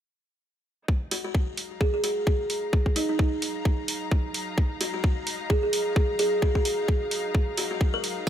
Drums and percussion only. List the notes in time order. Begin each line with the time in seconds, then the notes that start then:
0.88 kick
1.11 open hi-hat
1.35 kick
1.57 open hi-hat
1.81 kick
2.04 open hi-hat
2.27 kick
2.50 open hi-hat
2.73 kick
2.86 kick
2.96 open hi-hat
3.19 kick
3.42 open hi-hat
3.65 kick
3.88 open hi-hat
4.11 kick
4.34 open hi-hat
4.58 kick
4.81 open hi-hat
5.04 kick
5.27 open hi-hat
5.50 kick
5.73 open hi-hat
5.96 kick
6.19 open hi-hat
6.42 kick
6.55 kick
6.65 open hi-hat
6.88 kick
7.11 open hi-hat
7.35 kick
7.57 open hi-hat
7.81 kick
8.04 open hi-hat